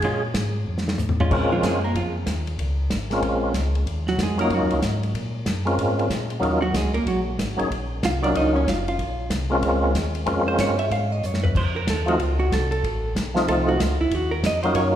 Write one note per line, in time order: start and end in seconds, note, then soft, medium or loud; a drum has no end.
0.00 0.34 A#2 medium
0.00 0.23 G#4 medium
0.00 kick soft
0.00 ride medium
0.04 0.22 G#3 medium
0.04 0.22 C#4 medium
0.04 0.22 F4 medium
0.34 0.66 G#2 medium
0.34 kick soft
0.34 snare medium
0.34 hi-hat pedal medium
0.34 ride medium
0.67 0.98 F2 medium
0.78 snare medium
0.88 snare medium
0.98 1.29 A2 medium
0.98 floor tom medium
0.98 hi-hat pedal medium
1.09 floor tom medium
1.20 1.31 G#3 medium
1.20 1.31 C#4 medium
1.20 1.31 F4 medium
1.20 floor tom medium
1.30 1.62 A#2 medium
1.30 1.79 G#3 medium
1.30 1.79 A#3 medium
1.30 1.79 C4 medium
1.30 1.80 C#4 medium
1.30 1.80 F4 medium
1.30 kick medium
1.30 crash medium
1.52 1.63 F3 medium
1.52 1.63 F4 medium
1.62 1.94 F#2 medium
1.62 1.84 G#4 medium
1.62 kick soft
1.62 snare medium
1.62 hi-hat pedal medium
1.62 ride medium
1.67 1.84 G#3 medium
1.84 1.96 A#3 medium
1.84 1.95 A#4 medium
1.94 2.26 F2 medium
1.94 2.16 F3 medium
1.94 2.15 F4 medium
1.94 kick soft
1.94 ride medium
2.26 2.57 D#2 medium
2.26 kick soft
2.26 snare medium
2.26 hi-hat pedal medium
2.26 ride medium
2.47 ride soft
2.58 2.90 C#2 medium
2.58 kick soft
2.58 ride medium
2.90 3.22 G#1 medium
2.90 kick soft
2.90 snare medium
2.90 hi-hat pedal medium
2.90 ride medium
3.10 3.52 G#3 medium
3.10 3.53 A#3 medium
3.10 3.53 C4 medium
3.10 3.53 C#4 medium
3.10 3.54 F4 medium
3.10 snare soft
3.10 ride soft
3.22 3.53 A#1 medium
3.22 kick soft
3.22 ride medium
3.54 3.85 C#2 medium
3.54 kick soft
3.54 snare medium
3.54 hi-hat pedal soft
3.54 ride medium
3.75 ride soft
3.86 4.18 D#2 medium
3.86 kick soft
3.86 ride medium
4.07 4.19 F#3 medium
4.07 4.19 F#4 medium
4.07 snare soft
4.18 4.49 F2 medium
4.18 kick soft
4.18 snare medium
4.18 hi-hat pedal medium
4.18 ride medium
4.22 4.40 G#3 soft
4.22 4.40 G#4 medium
4.38 4.80 F#3 medium
4.38 4.80 A#3 medium
4.38 4.80 C#4 medium
4.38 4.80 D#4 medium
4.38 4.81 F4 medium
4.38 4.51 A#4 medium
4.38 ride soft
4.42 4.52 A#3 medium
4.50 4.61 F#2 medium
4.50 kick soft
4.50 ride medium
4.54 4.72 F#3 medium
4.54 4.72 F#4 medium
4.62 4.72 D#2 medium
4.71 4.82 C#2 medium
4.71 ride soft
4.82 5.13 G#2 medium
4.82 kick soft
4.82 snare medium
4.82 hi-hat pedal medium
4.82 ride medium
5.03 ride soft
5.14 5.45 A#2 medium
5.14 kick soft
5.14 ride medium
5.45 5.77 F#2 medium
5.45 kick soft
5.45 snare medium
5.45 hi-hat pedal medium
5.45 ride medium
5.65 6.08 G#3 medium
5.65 6.08 A#3 medium
5.65 6.08 C4 medium
5.65 6.08 C#4 medium
5.65 6.08 F4 medium
5.65 ride soft
5.78 6.09 G#2 medium
5.78 kick soft
5.78 ride medium
5.99 ride soft
6.10 6.42 A#2 medium
6.10 kick soft
6.10 snare medium
6.10 hi-hat pedal medium
6.10 ride medium
6.30 ride soft
6.40 6.73 D#2 medium
6.40 6.59 F#3 medium
6.40 6.60 A#3 medium
6.40 6.60 C#4 medium
6.40 6.61 D#4 medium
6.40 6.61 F4 medium
6.40 kick soft
6.40 ride soft
6.62 6.74 F#3 medium
6.62 6.74 F#4 medium
6.74 6.92 C#2 medium
6.74 6.95 G#3 medium
6.74 6.94 G#4 medium
6.74 kick soft
6.74 snare medium
6.74 hi-hat pedal medium
6.74 ride medium
6.93 6.99 C#2 soft
6.93 7.07 A#3 medium
6.93 7.06 A#4 medium
6.93 ride soft
7.06 7.38 A#1 medium
7.06 7.19 F#3 medium
7.06 7.20 F#4 medium
7.06 kick soft
7.06 ride medium
7.38 7.57 G#1 medium
7.38 kick soft
7.38 snare medium
7.38 hi-hat pedal medium
7.38 ride medium
7.57 7.65 G#1 soft
7.57 7.69 F#3 medium
7.57 7.69 A#3 medium
7.57 7.69 C#4 medium
7.57 7.70 D#4 medium
7.57 7.70 G#4 medium
7.57 ride soft
7.71 8.02 A#1 medium
7.71 kick soft
7.71 ride medium
8.03 8.34 C2 medium
8.03 8.24 F4 medium
8.03 8.23 F5 medium
8.03 kick soft
8.03 snare medium
8.03 hi-hat pedal medium
8.03 ride medium
8.22 8.64 F#3 medium
8.22 8.65 A#3 medium
8.22 8.65 C#4 medium
8.22 8.35 D4 medium
8.22 8.65 D#4 medium
8.22 8.65 F4 medium
8.22 8.35 D5 medium
8.22 ride soft
8.34 8.66 C#2 medium
8.34 8.55 D#4 medium
8.34 8.56 D#5 medium
8.34 kick soft
8.34 ride medium
8.56 8.67 C#4 medium
8.56 8.67 C#5 medium
8.67 8.98 F#1 medium
8.67 8.87 F4 medium
8.67 8.87 F5 medium
8.67 kick soft
8.67 snare medium
8.67 hi-hat pedal soft
8.67 ride medium
8.88 9.29 F4 medium
8.88 9.29 F5 medium
8.88 ride soft
8.99 9.30 A#1 medium
8.99 kick soft
8.99 ride medium
9.30 9.62 C2 medium
9.30 kick soft
9.30 snare medium
9.30 hi-hat pedal medium
9.30 ride medium
9.50 9.92 G#3 medium
9.50 9.93 A#3 medium
9.50 9.93 C4 medium
9.50 9.93 C#4 medium
9.50 9.93 F4 medium
9.62 9.94 C#2 medium
9.62 kick soft
9.62 ride medium
9.94 10.26 D#2 medium
9.94 kick soft
9.94 snare medium
9.94 hi-hat pedal medium
9.94 ride medium
10.15 ride soft
10.26 10.58 F2 medium
10.26 10.75 G#3 medium
10.26 10.75 A#3 medium
10.26 10.75 C4 medium
10.26 10.76 C#4 medium
10.26 10.76 F4 medium
10.26 kick soft
10.26 ride medium
10.48 10.59 C5 medium
10.58 10.90 G2 medium
10.58 10.79 C#5 medium
10.58 kick soft
10.58 snare medium
10.58 hi-hat pedal medium
10.58 ride medium
10.79 10.91 E5 medium
10.79 ride soft
10.90 11.22 G#2 medium
10.90 11.12 F5 loud
10.90 kick soft
10.90 ride medium
11.12 11.26 D#5 medium
11.23 11.55 F#2 medium
11.23 11.44 C#5 medium
11.23 hi-hat pedal medium
11.34 snare medium
11.44 11.55 B4 medium
11.44 floor tom medium
11.55 11.86 F2 medium
11.55 11.76 C5 medium
11.55 kick medium
11.55 crash medium
11.76 11.88 A#4 medium
11.87 12.19 D#2 medium
11.87 12.09 A4 medium
11.87 kick soft
11.87 snare medium
11.87 hi-hat pedal medium
11.87 ride medium
12.06 12.18 F3 medium
12.06 12.18 A3 medium
12.06 12.18 C4 medium
12.06 12.19 D#4 medium
12.06 12.19 F4 medium
12.06 12.22 F#4 medium
12.06 ride soft
12.19 12.51 C#2 medium
12.19 12.39 F4 medium
12.19 kick soft
12.19 ride medium
12.40 12.51 F#4 medium
12.51 12.83 C2 medium
12.51 12.70 A4 medium
12.51 kick soft
12.51 snare medium
12.51 hi-hat pedal soft
12.51 ride medium
12.71 13.12 A4 medium
12.71 ride soft
12.83 13.15 A1 medium
12.83 kick soft
12.83 ride medium
13.15 13.47 B1 medium
13.15 kick soft
13.15 snare medium
13.15 hi-hat pedal medium
13.15 ride medium
13.34 13.77 F3 medium
13.34 13.77 A3 medium
13.34 13.78 C4 medium
13.34 13.78 D#4 medium
13.34 13.78 F4 medium
13.34 snare medium
13.47 13.79 C2 medium
13.47 13.68 A4 medium
13.47 kick soft
13.47 ride medium
13.69 13.80 F#4 loud
13.79 13.98 C#2 medium
13.79 14.00 F4 medium
13.79 kick soft
13.79 snare medium
13.79 hi-hat pedal medium
13.79 ride medium
14.00 14.06 C#2 soft
14.00 14.15 E4 medium
14.11 14.43 D#2 medium
14.11 14.33 F#4 medium
14.11 kick soft
14.11 ride medium
14.31 14.43 A#4 medium
14.43 14.75 F2 medium
14.43 14.62 D#5 loud
14.43 kick soft
14.43 snare medium
14.43 hi-hat pedal medium
14.43 ride medium
14.63 14.96 F#3 medium
14.63 14.96 A#3 medium
14.63 14.96 C#4 medium
14.63 14.96 D#4 medium
14.63 14.96 F4 medium
14.63 14.75 C5 medium
14.63 ride soft
14.75 14.96 F#2 medium
14.75 14.88 C#5 medium
14.75 kick soft
14.75 ride medium